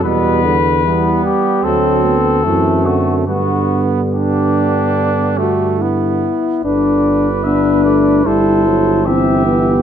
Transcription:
X:1
M:4/4
L:1/8
Q:1/4=74
K:G
V:1 name="Cornet"
B3 G A3 F | F z G4 z2 | d2 e d c2 e2 |]
V:2 name="French horn"
G, z G,2 A, B, C2 | B,4- B, F E2 | D2 D2 E2 C B, |]
V:3 name="Trumpet"
B, z B,2 C2 A,2 | B,2 D3 A, B,2 | B4 A2 G2 |]
V:4 name="Trombone" clef=bass
B,, D, E, G, F, z E, D, | D,6- D, z | D,2 B, A, G, F, E,2 |]
V:5 name="Bass trombone" clef=bass
E,,3 z D,,2 F,,2 | G,,6- G,, z | G,,,4 G,,,4 |]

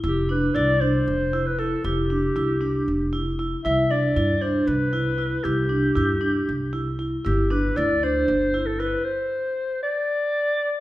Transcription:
X:1
M:7/8
L:1/16
Q:1/4=116
K:C
V:1 name="Clarinet"
G2 B2 d2 c4- c B A2 | G12 z2 | e2 d4 c2 B6 | G12 z2 |
G2 B2 d2 c4- c A B2 | c6 d8 |]
V:2 name="Vibraphone"
E2 D2 E2 D4 E2 E2 | E2 D2 E2 D4 E2 E2 | E2 D2 E2 D4 E2 E2 | E2 D2 E2 D4 E2 E2 |
E2 D2 E2 D4 E2 E2 | z12 z2 |]
V:3 name="Upright bass" clef=bass
F,,,4 C,,4 F,,,6 | F,,,4 C,,4 F,,,6 | C,,4 G,,4 C,,6 | C,,4 G,,4 C,,6 |
G,,,4 D,,4 G,,,6 | z12 z2 |]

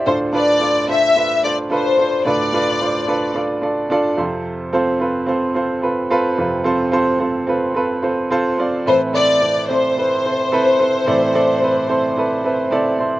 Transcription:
X:1
M:4/4
L:1/8
Q:"Swing 16ths" 1/4=109
K:Flyd
V:1 name="Violin section"
c d2 e2 d c2 | d4 z4 | z8 | z8 |
c d2 c4- c- | c6 z2 |]
V:2 name="Upright piano"
[DFAc] [DFAB] [DFAd] [DFAc] [DFAB] [DFAc] [DFAB] [DFAc] | [DFAB] [DFAB] [DFAc] [DFAB] [DFAd] [DFAd] [DFAd] [CFAc]- | [CFAc] [CFAc] [CFAB] [CFAc] [CFAc] [CFAB] [CFAB] [CFAB] | [CFAc] [CFAc] [CFAc] [CFAB] [CFAB] [CFAc] [CFAc] [CFAd] |
[CEAB] [CEAd] [CEAd] [CEAd] [CEAB] [CEAc] [CEAB] [CEAB] | [CEAd] [CEAd] [CEAB] [CEAc] [CEAB] [CEAB] [CEAd] [CEAc] |]
V:3 name="Upright piano" clef=bass
[D,,A,,]8 | [D,,A,,]6- [D,,A,,] [F,,C,]- | [F,,C,]6- [F,,C,] [F,,C,]- | [F,,C,]6- [F,,C,] z |
[A,,E,]8 | [A,,E,]8 |]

